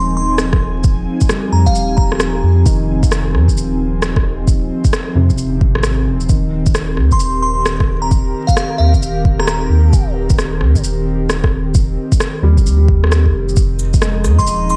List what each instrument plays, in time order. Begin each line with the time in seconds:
Already playing: sub bass D#1, analog synth pad F3 C4 D#4 A#4 G#5, upright piano G#3, synth bell C6
0.17 synth bell C6
0.38 cross-stick, shaker
0.53 kick, cross-stick
0.84 kick, shaker
1.21 kick, shaker
1.29 upright piano G3, cross-stick, shaker
1.52 sub bass F2, synth bell A#5
1.66 sub bass D#1, synth bell F5, kick, shaker
1.75 shaker
1.97 synth bell A#5, kick
2.12 cross-stick
2.20 cross-stick, shaker
2.43 sub bass F2
2.65 sub bass F1, upright piano D#3, kick, shaker
3.03 kick, shaker
3.12 cross-stick, shaker
3.33 sub bass F2, cross-stick
3.48 sub bass D#1, kick, shaker
3.57 shaker
4.02 cross-stick, shaker
4.16 kick, cross-stick
4.47 kick, shaker
4.84 kick, shaker
4.93 cross-stick, shaker
5.15 sub bass F2, upright piano C3
5.30 sub bass D#1, kick, shaker
5.38 shaker
5.61 sub bass G#1, kick
5.75 cross-stick
5.83 cross-stick, shaker
6.07 sub bass D#1
6.20 shaker
6.29 sub bass D#1, analog synth pad D#3, upright piano D#3, kick, shaker
6.44 analog synth pad G4
6.66 kick, shaker
6.75 cross-stick, shaker
6.94 sub bass D#2, analog synth pad A#4, cross-stick
7.11 sub bass D#1, synth bell C6, kick, shaker
7.20 shaker
7.42 synth bell C6
7.66 cross-stick, shaker
7.80 kick, cross-stick
8.02 synth bell A#5
8.11 kick, shaker
8.47 synth bell F5, kick, shaker
8.57 cross-stick, shaker
8.78 sub bass D#2, synth bell F5
8.94 sub bass D#1, kick, shaker
9.03 shaker
9.25 kick
9.39 synth bell A#5, cross-stick
9.47 cross-stick, shaker
9.70 sub bass D#2
9.93 sub bass D#1, kick, shaker
10.30 kick, shaker
10.39 cross-stick, shaker
10.60 sub bass D#2, cross-stick
10.75 sub bass D#1, kick, shaker
10.84 shaker
11.30 cross-stick, shaker
11.44 kick, cross-stick
11.74 kick, shaker
12.12 kick, shaker
12.20 cross-stick, shaker
12.42 sub bass D#2, upright piano G3
12.57 sub bass D#1, kick, shaker
12.65 sub bass D#2, shaker
12.88 kick
13.04 cross-stick
13.12 cross-stick, shaker
13.26 kick
13.34 sub bass F1
13.49 shaker
13.56 sub bass F1, analog synth pad F3, synth texture D#4 D#5, kick, shaker
13.70 analog synth pad C4 G#4
13.79 cabasa
13.93 kick, shaker
13.98 upright piano G#3, analog synth pad D#4, cross-stick, shaker
14.24 sub bass F2, cross-stick, cabasa
14.39 sub bass D#1, synth bell C6, kick, shaker
14.47 shaker
14.70 synth bell C6, cabasa